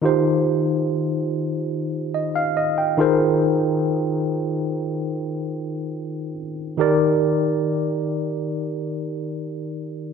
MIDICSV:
0, 0, Header, 1, 2, 480
1, 0, Start_track
1, 0, Key_signature, -3, "major"
1, 0, Tempo, 500000
1, 9727, End_track
2, 0, Start_track
2, 0, Title_t, "Tine electric piano"
2, 0, Program_c, 0, 4
2, 15, Note_on_c, 0, 51, 66
2, 24, Note_on_c, 0, 63, 61
2, 34, Note_on_c, 0, 65, 62
2, 42, Note_on_c, 0, 67, 58
2, 53, Note_on_c, 0, 72, 73
2, 202, Control_c, 0, 64, 127
2, 2059, Note_on_c, 0, 75, 56
2, 2252, Note_off_c, 0, 75, 0
2, 2261, Note_on_c, 0, 77, 63
2, 2454, Note_off_c, 0, 77, 0
2, 2466, Note_on_c, 0, 75, 68
2, 2658, Note_off_c, 0, 75, 0
2, 2668, Note_on_c, 0, 79, 55
2, 2825, Note_off_c, 0, 51, 0
2, 2829, Note_off_c, 0, 63, 0
2, 2834, Note_off_c, 0, 65, 0
2, 2838, Note_off_c, 0, 67, 0
2, 2843, Note_off_c, 0, 72, 0
2, 2854, Note_on_c, 0, 51, 67
2, 2862, Note_on_c, 0, 63, 66
2, 2868, Note_on_c, 0, 65, 66
2, 2875, Note_on_c, 0, 68, 62
2, 2883, Note_on_c, 0, 70, 60
2, 2884, Control_c, 0, 64, 0
2, 2892, Note_on_c, 0, 72, 77
2, 3035, Control_c, 0, 64, 127
2, 3053, Note_off_c, 0, 79, 0
2, 6069, Note_off_c, 0, 51, 0
2, 6073, Note_off_c, 0, 63, 0
2, 6076, Note_off_c, 0, 65, 0
2, 6080, Note_off_c, 0, 68, 0
2, 6084, Note_off_c, 0, 70, 0
2, 6088, Note_off_c, 0, 72, 0
2, 6503, Note_on_c, 0, 51, 69
2, 6512, Note_on_c, 0, 63, 58
2, 6521, Note_on_c, 0, 67, 62
2, 6530, Note_on_c, 0, 70, 63
2, 6536, Control_c, 0, 64, 0
2, 6539, Note_on_c, 0, 74, 75
2, 6677, Control_c, 0, 64, 127
2, 9719, Note_off_c, 0, 51, 0
2, 9723, Note_off_c, 0, 63, 0
2, 9727, Note_off_c, 0, 67, 0
2, 9727, Note_off_c, 0, 70, 0
2, 9727, Note_off_c, 0, 74, 0
2, 9727, End_track
0, 0, End_of_file